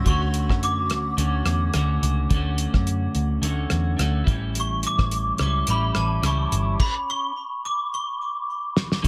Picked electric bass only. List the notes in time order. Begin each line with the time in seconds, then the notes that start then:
0.06 D2
0.50 F#2
0.89 D2
1.18 D2
1.45 E2
1.75 D2
2.02 C#2
2.31 D2
2.74 F#2
3.15 D2
3.42 D2
3.72 E2
3.99 D2
4.27 A1
4.98 A1
5.40 C#2
5.68 A1
5.96 A1
6.22 C#2
6.52 G1
9.04 D2